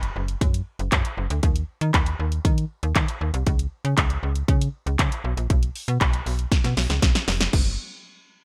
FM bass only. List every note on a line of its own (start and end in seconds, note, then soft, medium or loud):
0.00 0.11 F#1 loud
0.16 0.36 F#1 loud
0.41 0.61 F#2 loud
0.79 0.90 F#1 medium
0.92 1.02 F#2 medium
1.17 1.28 F#1 medium
1.30 1.41 D2 loud
1.43 1.63 D#2 loud
1.81 1.91 D#3 loud
1.94 2.14 D#2 medium
2.20 2.40 D#2 medium
2.45 2.65 D#3 medium
2.83 2.93 D#2 medium
2.96 3.06 D#3 medium
3.21 3.31 D#2 medium
3.34 3.44 C2 loud
3.47 3.67 C#2 loud
3.85 3.95 C#3 loud
3.98 4.18 C#2 loud
4.23 4.43 C#2 medium
4.48 4.69 C#3 loud
4.86 4.96 C#2 medium
4.99 5.09 C#3 medium
5.24 5.35 B1 loud
5.37 5.47 A#1 medium
5.50 5.70 B1 loud
5.88 5.98 B2 loud
6.01 6.21 B1 loud
6.26 6.46 B1 medium
6.64 6.74 B2 medium
6.77 6.87 B1 medium
6.90 7.00 C#2 medium
7.02 7.13 B1 medium
7.28 7.48 F1 loud
7.53 7.77 F#1 loud